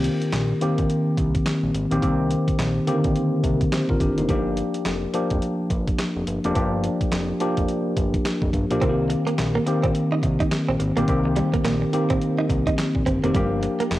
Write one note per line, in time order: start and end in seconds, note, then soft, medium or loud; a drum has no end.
0.00 0.45 D#3 medium
0.00 0.46 A#3 medium
0.00 0.46 C4 medium
0.00 0.46 G4 medium
0.04 closed hi-hat medium
0.22 closed hi-hat soft
0.32 0.53 A#1 loud
0.32 snare loud
0.32 clap medium
0.32 closed hi-hat medium
0.61 1.51 D#3 medium
0.61 1.52 A#3 medium
0.61 1.52 C4 medium
0.61 1.52 G4 loud
0.61 closed hi-hat medium
0.78 0.86 A#1 medium
0.78 kick medium
0.78 closed hi-hat soft
0.90 closed hi-hat medium
1.17 1.38 C2 medium
1.17 kick medium
1.17 closed hi-hat medium
1.35 kick medium
1.35 closed hi-hat medium
1.46 snare loud
1.46 clap medium
1.46 closed hi-hat medium
1.63 1.71 A#1 medium
1.74 1.87 G#1 medium
1.74 closed hi-hat medium
1.91 2.00 A#1 loud
1.91 2.00 D#3 medium
1.91 2.00 A#3 medium
1.91 2.00 C4 medium
1.91 2.01 G4 medium
1.91 closed hi-hat medium
2.02 2.36 C2 loud
2.02 2.72 D#3 medium
2.02 2.72 A#3 medium
2.02 2.72 C4 medium
2.02 2.72 G4 medium
2.02 kick loud
2.02 closed hi-hat medium
2.31 closed hi-hat medium
2.48 kick medium
2.48 closed hi-hat medium
2.59 2.80 A#1 medium
2.59 snare loud
2.59 clap medium
2.59 closed hi-hat soft
2.87 2.95 D3 medium
2.87 3.72 A#3 medium
2.87 3.72 C4 medium
2.87 3.72 G4 loud
2.87 closed hi-hat medium
2.93 3.81 D#3 medium
3.04 3.13 A#1 medium
3.04 kick medium
3.04 closed hi-hat soft
3.16 closed hi-hat medium
3.44 3.64 C2 medium
3.44 kick medium
3.44 closed hi-hat medium
3.61 kick medium
3.61 closed hi-hat medium
3.72 3.89 G4 medium
3.72 3.89 C5 medium
3.72 snare loud
3.72 clap medium
3.72 closed hi-hat medium
3.89 3.97 A#1 medium
3.89 4.01 F4 medium
3.89 4.00 A#4 medium
3.89 kick medium
4.00 4.13 G1 medium
4.00 4.17 D4 medium
4.00 4.17 G4 medium
4.00 kick loud
4.00 closed hi-hat medium
4.18 4.26 F1 loud
4.18 4.28 A#3 medium
4.18 4.45 D#4 medium
4.18 closed hi-hat medium
4.29 4.62 G1 loud
4.29 4.98 F3 medium
4.29 4.98 A#3 medium
4.29 4.99 D4 medium
4.29 4.99 G4 medium
4.29 kick loud
4.29 closed hi-hat medium
4.57 closed hi-hat medium
4.74 closed hi-hat medium
4.85 5.06 F1 medium
4.85 snare loud
4.85 clap medium
4.85 closed hi-hat medium
5.14 6.04 F3 medium
5.14 6.04 A#3 medium
5.14 6.05 D4 medium
5.14 6.05 G4 loud
5.14 closed hi-hat medium
5.30 5.39 F1 medium
5.30 kick medium
5.30 closed hi-hat soft
5.42 closed hi-hat medium
5.70 5.91 G1 medium
5.70 kick medium
5.70 closed hi-hat medium
5.87 kick medium
5.87 closed hi-hat medium
5.98 snare loud
5.98 clap medium
5.98 closed hi-hat medium
6.16 6.24 F1 medium
6.27 6.40 G1 medium
6.27 closed hi-hat medium
6.44 6.53 F1 medium
6.44 6.53 F3 medium
6.44 6.53 A#3 medium
6.44 6.53 D4 medium
6.44 6.54 G4 loud
6.44 closed hi-hat medium
6.55 6.88 G1 loud
6.55 7.25 F3 medium
6.55 7.25 A#3 medium
6.55 7.25 D4 medium
6.55 7.25 G4 medium
6.55 kick loud
6.55 closed hi-hat medium
6.84 closed hi-hat medium
7.01 kick medium
7.01 closed hi-hat medium
7.12 7.33 F1 medium
7.12 snare loud
7.12 clap medium
7.12 closed hi-hat medium
7.40 8.31 F3 medium
7.40 8.31 A#3 medium
7.40 8.31 D4 medium
7.40 8.31 G4 loud
7.40 closed hi-hat medium
7.57 7.66 F1 medium
7.57 kick medium
7.57 closed hi-hat soft
7.68 closed hi-hat medium
7.97 8.17 G1 medium
7.97 kick medium
7.97 closed hi-hat medium
8.14 kick medium
8.14 closed hi-hat medium
8.25 snare loud
8.25 clap medium
8.25 closed hi-hat medium
8.42 8.50 F1 medium
8.42 kick loud
8.53 8.66 G1 medium
8.53 kick medium
8.53 closed hi-hat medium
8.70 8.79 A#1 medium
8.70 8.79 F3 medium
8.70 8.79 A#3 medium
8.70 8.80 D4 medium
8.70 8.80 G4 medium
8.70 closed hi-hat medium
8.81 9.15 C2 loud
8.81 9.51 D#3 medium
8.81 9.51 A#3 medium
8.81 8.91 C4 medium
8.81 9.51 C4 medium
8.81 8.90 F4 medium
8.81 kick loud
8.81 closed hi-hat medium
8.89 9.55 G4 medium
9.10 muted clean electric guitar stroke soft
9.10 closed hi-hat medium
9.27 9.33 A#3 medium
9.27 closed hi-hat medium
9.38 9.59 A#1 medium
9.38 snare loud
9.38 clap medium
9.38 closed hi-hat medium
9.55 9.61 A#3 medium
9.66 10.57 D#3 medium
9.66 10.57 A#3 medium
9.66 10.57 C4 medium
9.66 10.58 G4 medium
9.66 muted clean electric guitar stroke soft
9.66 closed hi-hat medium
9.83 9.92 A#1 medium
9.83 9.90 C4 medium
9.83 kick medium
9.83 closed hi-hat soft
9.95 closed hi-hat medium
10.12 10.18 D#4 medium
10.23 10.44 C2 loud
10.23 muted clean electric guitar stroke soft
10.23 kick medium
10.23 closed hi-hat medium
10.40 10.46 D#4 medium
10.40 kick medium
10.40 closed hi-hat medium
10.51 snare loud
10.51 clap medium
10.51 closed hi-hat medium
10.69 10.77 A#1 medium
10.69 10.75 C4 medium
10.80 10.92 G#1 medium
10.80 muted clean electric guitar stroke soft
10.80 closed hi-hat medium
10.97 11.05 A#1 medium
10.97 11.06 D#3 medium
10.97 11.03 A#3 medium
10.97 11.06 A#3 medium
10.97 11.06 C4 medium
10.97 11.06 G4 loud
10.97 closed hi-hat medium
11.08 11.41 C2 loud
11.08 11.77 D#3 medium
11.08 11.78 A#3 medium
11.08 11.78 C4 medium
11.08 11.78 G4 medium
11.08 kick loud
11.08 closed hi-hat medium
11.25 muted clean electric guitar stroke soft
11.36 11.46 G3 medium
11.36 closed hi-hat medium
11.54 11.60 A#3 medium
11.54 kick medium
11.54 closed hi-hat soft
11.65 11.85 A#1 medium
11.65 11.74 A#3 medium
11.65 snare loud
11.65 clap medium
11.65 closed hi-hat medium
11.82 muted clean electric guitar stroke soft
11.93 12.83 D#3 medium
11.93 12.84 A#3 medium
11.93 12.84 C4 medium
11.93 12.84 G4 medium
11.93 closed hi-hat medium
12.10 12.19 A#1 medium
12.10 12.16 C4 medium
12.10 kick medium
12.10 closed hi-hat soft
12.22 closed hi-hat medium
12.39 12.45 D#4 medium
12.50 12.70 C2 medium
12.50 muted clean electric guitar stroke soft
12.50 kick medium
12.50 closed hi-hat medium
12.67 12.73 D#4 medium
12.67 kick medium
12.67 closed hi-hat medium
12.78 muted clean electric guitar stroke soft
12.78 snare loud
12.78 clap medium
12.78 closed hi-hat medium
12.95 13.03 A#1 medium
12.95 kick medium
13.06 13.19 G1 medium
13.06 13.16 C4 medium
13.06 kick medium
13.06 closed hi-hat medium
13.23 13.32 F1 loud
13.23 13.32 D#3 medium
13.23 13.30 A#3 medium
13.23 13.32 A#3 medium
13.23 13.33 C4 medium
13.23 13.33 G4 loud
13.23 closed hi-hat medium
13.34 13.68 G1 loud
13.34 13.99 F3 medium
13.34 13.44 G3 medium
13.34 13.99 A#3 medium
13.34 13.99 D4 medium
13.34 13.99 G4 medium
13.34 kick loud
13.34 closed hi-hat medium
13.63 muted clean electric guitar stroke soft
13.63 closed hi-hat medium
13.80 13.86 A#3 medium
13.80 closed hi-hat medium
13.91 13.99 F1 medium
13.91 snare loud
13.91 clap medium
13.91 closed hi-hat medium